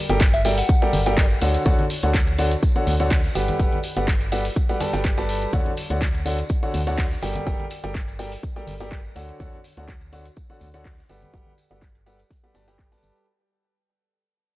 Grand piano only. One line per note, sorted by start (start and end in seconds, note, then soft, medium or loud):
0.10 0.19 G3 medium
0.10 0.19 G4 medium
0.10 0.19 A4 medium
0.10 0.19 A#4 medium
0.10 0.19 D5 medium
0.10 0.19 G5 medium
0.45 0.56 G3 medium
0.45 0.56 G4 medium
0.45 0.56 A4 medium
0.45 0.56 A#4 medium
0.45 0.56 D5 medium
0.45 0.56 G5 medium
0.82 0.98 G3 medium
0.82 0.98 G4 medium
0.82 0.98 A4 medium
0.82 0.98 A#4 medium
0.82 0.98 D5 medium
0.82 0.98 G5 medium
1.06 1.22 G3 medium
1.06 1.22 G4 medium
1.06 1.22 A4 medium
1.06 1.22 A#4 medium
1.06 1.22 D5 medium
1.06 1.22 G5 medium
1.42 1.63 D3 medium
1.42 1.63 F#4 medium
1.42 1.63 A4 medium
1.42 1.63 C#5 medium
1.42 1.63 D5 medium
1.42 1.63 F#5 medium
1.66 1.83 D3 medium
1.66 1.83 F#4 medium
1.66 1.83 A4 medium
1.66 1.83 C#5 medium
1.66 1.83 D5 medium
1.66 1.83 F#5 loud
2.03 2.13 D3 medium
2.03 2.13 F#4 medium
2.03 2.13 A4 medium
2.03 2.13 C#5 medium
2.03 2.13 D5 medium
2.03 2.13 F#5 medium
2.39 2.50 D3 medium
2.39 2.50 F#4 medium
2.39 2.50 A4 medium
2.39 2.50 C#5 medium
2.39 2.50 D5 medium
2.39 2.50 F#5 medium
2.76 2.92 D3 medium
2.76 2.92 F#4 medium
2.76 2.92 A4 medium
2.76 2.92 C#5 medium
2.76 2.92 D5 medium
2.76 2.92 F#5 medium
3.00 3.16 D3 medium
3.00 3.16 F#4 medium
3.00 3.16 A4 medium
3.00 3.16 C#5 medium
3.00 3.16 D5 medium
3.00 3.16 F#5 loud
3.35 3.57 G3 medium
3.35 3.57 G4 medium
3.35 3.57 A4 medium
3.35 3.57 B4 medium
3.35 3.57 D5 medium
3.35 3.57 F#5 medium
3.59 3.76 G3 medium
3.59 3.76 G4 medium
3.59 3.76 A4 medium
3.59 3.76 B4 medium
3.59 3.76 D5 medium
3.59 3.76 F#5 loud
3.97 4.06 G3 medium
3.97 4.06 G4 medium
3.97 4.06 A4 medium
3.97 4.06 B4 medium
3.97 4.06 D5 medium
3.97 4.06 F#5 medium
4.32 4.43 G3 medium
4.32 4.43 G4 medium
4.32 4.43 A4 medium
4.32 4.43 B4 medium
4.32 4.43 D5 medium
4.32 4.43 F#5 medium
4.69 4.78 G3 medium
4.69 4.78 G4 medium
4.69 4.78 A4 medium
4.69 4.78 B4 medium
4.69 4.78 D5 medium
4.69 4.78 F#5 medium
4.81 4.91 G3 medium
4.81 4.91 G4 medium
4.81 4.92 A4 medium
4.81 4.91 B4 medium
4.81 4.91 D5 medium
4.81 4.91 A5 medium
4.94 5.15 G3 medium
4.94 5.15 G4 medium
4.94 5.15 A4 medium
4.94 5.15 B4 medium
4.94 5.15 D5 medium
4.94 5.14 G5 medium
5.18 5.50 G3 medium
5.18 5.50 G4 medium
5.18 5.50 A4 medium
5.18 5.50 B4 medium
5.18 5.50 D5 medium
5.18 5.50 A5 medium
5.53 5.70 D3 medium
5.53 5.70 F#4 medium
5.53 5.70 A4 medium
5.53 5.70 C#5 medium
5.53 5.70 D5 medium
5.53 5.70 F#5 loud
5.90 6.00 D3 medium
5.90 6.00 F#4 medium
5.90 6.00 A4 medium
5.90 6.00 C#5 medium
5.90 6.00 D5 medium
5.90 6.00 F#5 medium
6.26 6.37 D3 medium
6.26 6.37 F#4 medium
6.26 6.37 A4 medium
6.26 6.37 C#5 medium
6.26 6.37 D5 medium
6.26 6.37 F#5 medium
6.63 6.79 D3 medium
6.63 6.79 F#4 medium
6.63 6.79 A4 medium
6.63 6.79 C#5 medium
6.63 6.79 D5 medium
6.63 6.79 F#5 medium
6.87 7.03 D3 medium
6.87 7.03 F#4 medium
6.87 7.03 A4 medium
6.87 7.03 C#5 medium
6.87 7.03 D5 medium
6.87 7.03 F#5 loud
7.22 7.44 G3 medium
7.22 7.44 G4 medium
7.22 7.44 A4 medium
7.22 7.44 A#4 medium
7.22 7.44 D5 medium
7.22 7.44 G5 medium
7.46 7.63 G3 medium
7.46 7.64 G4 medium
7.46 7.64 A4 medium
7.46 7.63 A#4 medium
7.46 7.63 D5 medium
7.46 7.63 G5 loud
7.84 7.93 G3 medium
7.84 7.93 G4 medium
7.84 7.93 A4 medium
7.84 7.93 A#4 medium
7.84 7.93 D5 medium
7.84 7.93 G5 medium
8.19 8.30 G3 medium
8.19 8.30 G4 medium
8.19 8.30 A4 medium
8.19 8.30 A#4 medium
8.19 8.30 D5 medium
8.19 8.30 G5 medium
8.56 8.72 G3 medium
8.56 8.72 G4 medium
8.56 8.72 A4 medium
8.56 8.72 A#4 medium
8.56 8.72 D5 medium
8.56 8.72 G5 medium
8.80 8.96 G3 medium
8.80 8.96 G4 medium
8.80 8.96 A4 medium
8.80 8.96 A#4 medium
8.80 8.96 D5 medium
8.80 8.96 G5 medium
9.16 9.37 D3 medium
9.16 9.37 F#4 medium
9.16 9.37 A4 medium
9.16 9.37 C#5 medium
9.16 9.37 D5 medium
9.16 9.37 F#5 medium
9.40 9.57 D3 medium
9.40 9.57 F#4 medium
9.40 9.57 A4 medium
9.40 9.57 C#5 medium
9.40 9.57 D5 medium
9.40 9.57 F#5 loud
9.77 9.87 D3 medium
9.77 9.87 F#4 medium
9.77 9.87 A4 medium
9.77 9.87 C#5 medium
9.77 9.87 D5 medium
9.77 9.87 F#5 medium
10.13 10.24 D3 medium
10.13 10.24 F#4 medium
10.13 10.24 A4 medium
10.13 10.24 C#5 medium
10.13 10.24 D5 medium
10.13 10.24 F#5 medium
10.50 10.66 D3 medium
10.50 10.66 F#4 medium
10.50 10.66 A4 medium
10.50 10.66 C#5 medium
10.50 10.66 D5 medium
10.50 10.66 F#5 medium
10.74 10.90 D3 medium
10.74 10.90 F#4 medium
10.74 10.90 A4 medium
10.74 10.90 C#5 medium
10.74 10.90 D5 medium
10.74 10.90 F#5 medium
11.09 11.31 G3 medium
11.09 11.31 G4 medium
11.09 11.31 A4 medium
11.09 11.31 B4 medium
11.09 11.31 D5 medium
11.09 11.31 F#5 medium
11.34 11.51 G3 medium
11.34 11.51 G4 medium
11.34 11.51 A4 medium
11.34 11.51 B4 medium
11.34 11.51 D5 medium
11.34 11.51 F#5 loud
11.71 11.80 G3 medium
11.71 11.80 G4 medium
11.71 11.80 A4 medium
11.71 11.80 B4 medium
11.71 11.80 D5 medium
11.71 11.80 F#5 medium
12.06 12.17 G3 medium
12.06 12.17 G4 medium
12.06 12.17 A4 medium
12.06 12.17 B4 medium
12.06 12.17 D5 medium
12.06 12.17 F#5 medium
12.43 12.52 G3 medium
12.43 12.52 G4 medium
12.43 12.52 A4 medium
12.43 12.52 B4 medium
12.43 12.52 D5 medium
12.43 12.52 F#5 medium
12.55 12.66 G3 medium
12.55 12.66 G4 medium
12.55 12.66 A4 medium
12.55 12.66 B4 medium
12.55 12.66 D5 medium
12.55 12.66 A5 medium
12.68 12.89 G3 medium
12.68 12.89 G4 medium
12.68 12.89 A4 medium
12.68 12.89 B4 medium
12.68 12.89 D5 medium
12.68 12.89 G5 medium
12.92 13.24 G3 medium
12.92 13.24 G4 medium
12.92 13.24 A4 medium
12.92 13.24 B4 medium
12.92 13.25 D5 medium
12.92 13.24 A5 medium